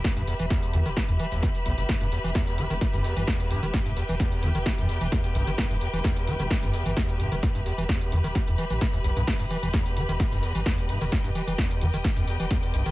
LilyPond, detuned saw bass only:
\new Staff \with { instrumentName = "Detuned saw bass" } { \clef bass \time 4/4 \key e \minor \tempo 4 = 130 r16 e,,16 r16 e,,16 r8 e,16 e,,16 r16 e,16 r16 e,,16 r8 b,,16 fis,,16 | r16 e,,16 r16 e,,16 r8 e,,16 e,,16 r16 g,,16 r16 g,,16 r8 e,,16 e,,16 | r16 e,,16 r16 e,,16 r8 e,16 e,,16 r16 e,16 r16 e,,16 r8 b,,16 fis,,16 | r16 e,,16 r16 e,,16 r8 e,,16 e,,16 r16 g,,16 r16 g,,16 r8 e,,16 e,,16 |
r16 e,,16 r16 e,,16 r8 e,16 e,,16 r16 e,16 r16 a,,16 r8 b,,16 b,,16 | r16 e,,16 r16 e,,16 r8 e,,16 e,,16 r16 g,,16 r16 g,,16 r8 e,,16 e,,16 | r16 e,,16 r16 e,,16 r8 e,16 e,,16 r16 e,16 r16 e,,16 r8 b,,16 fis,,16 | }